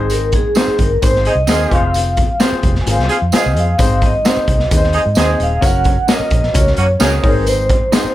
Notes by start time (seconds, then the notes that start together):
Already playing: G#1 G#2 C4 D#4 G#4 C5
0.10 A#4, closed hi-hat, tambourine
0.32 G#4, kick, closed hi-hat
0.55 C4 D#4 G#4 C5, snare, closed hi-hat, tambourine
0.68 muted fingered electric bass stroke
0.78 G1 A#4, kick, closed hi-hat
1.02 G#1 C4 D#4 G#4 C5, kick, closed hi-hat, tambourine
1.16 snare
1.25 C4 D#4 G#4 D#5, closed hi-hat
1.35 C2
1.47 D#2 C4 D#4 F4 G#4 A#4 C5, snare, closed hi-hat, tambourine
1.65 G#5
1.71 F1 C4 F4 G#4 C5 F5, kick, closed hi-hat
1.94 closed hi-hat, tambourine
2.17 kick, closed hi-hat
2.40 C4 F4 G#4 C5, snare, closed hi-hat, tambourine
2.52 muted fingered electric bass stroke
2.63 F1, kick, closed hi-hat
2.75 snare
2.81 G#5
2.86 G#1 C4 F4 G#4 A#4, closed hi-hat, tambourine
2.91 C5 F5
2.99 C2, snare
3.09 C4 F4 G#4, closed hi-hat
3.22 F2
3.32 C4 F4 G#4 C5 D#5, muted fingered electric bass stroke, snare, closed hi-hat, tambourine
3.46 C2
3.56 F2 F5, closed hi-hat
3.78 G#1 G#2 C4 D#4 G#4 C5, kick, closed hi-hat, tambourine
4.02 D#5, kick, closed hi-hat
4.24 C4 D#4 G#4 C5, snare, closed hi-hat, tambourine
4.37 muted fingered electric bass stroke
4.48 C2, kick, closed hi-hat
4.59 snare
4.70 D#2 C4 D#4 G#4 B4, kick, closed hi-hat, tambourine
4.74 C5 D#5
4.84 snare
4.93 C4 D#4 G#4, closed hi-hat
5.06 G#2
5.15 D#2 C4 D#4 G#4 C5, snare, closed hi-hat, tambourine
5.40 D#1 F5, closed hi-hat
5.61 F#1 C#4 F#4 A#4 C#5 F#5, kick, closed hi-hat, tambourine
5.84 kick, closed hi-hat
6.07 C#4 F#4 A4 A#4 C#5 D#5, snare, closed hi-hat, tambourine
6.12 A#4 D#5
6.20 muted fingered electric bass stroke
6.30 A#1, kick, closed hi-hat
6.43 snare
6.53 C#2 C#4 F#4 A#4 C#5, kick, closed hi-hat, tambourine
6.67 snare
6.77 F#2 A#3 C#4 F#4, closed hi-hat
6.99 C#2 C4 C#4 D#4 F#4 G#4 A#4 C#5, snare, closed hi-hat, tambourine
7.22 G#1 G#2 C4 D#4 G#4 A#4, kick, open hi-hat
7.27 A#4 C5
7.41 B4
7.46 C5, closed hi-hat, tambourine
7.69 kick, closed hi-hat
7.92 C4 D#4 G#4 C5 D#5, snare, closed hi-hat, tambourine
8.04 muted fingered electric bass stroke